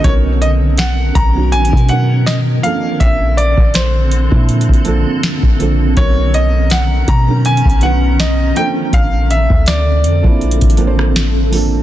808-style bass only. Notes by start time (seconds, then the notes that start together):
0.04 B1
1.15 B1
1.52 A#1
1.73 B2
3.01 A#1
3.58 A#1
4.32 A#2
4.69 A#1
5.43 A#1
5.97 B1
7.08 B2
7.65 B1
8.93 A#1
9.50 D2
10.04 F2
10.24 A#1
10.62 A1